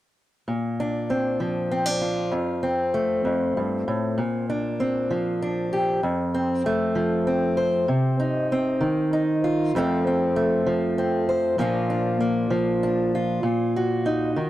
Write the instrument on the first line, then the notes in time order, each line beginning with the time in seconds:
steel-string acoustic guitar
0.48 A#2
0.80 D4
1.10 C4
1.40 F3
1.71 C4
1.86 D4
2.01 F4
2.31 F2
2.63 C4
2.94 A3
3.25 F2
3.57 G2
3.88 A2
4.18 A#2
4.50 D4
4.80 C4
5.11 F3
5.42 D4
5.73 G4
6.03 F2
6.34 C4
6.66 A3
6.95 F3
7.27 C4
7.57 C5
7.88 C3
8.20 D#4
8.52 C4
8.81 D#3
9.13 D#4
9.44 F4
9.75 F2 F3 A3 C4 A4
10.07 C4
10.36 A3
10.66 F3
10.98 C4
11.29 C5
11.58 A#2 F3 A#3 D4 F4
11.90 D4
12.20 A#3
12.50 F3
12.83 D4
13.15 F4
13.43 A#2
13.76 F#4
14.06 D#4
14.36 D#3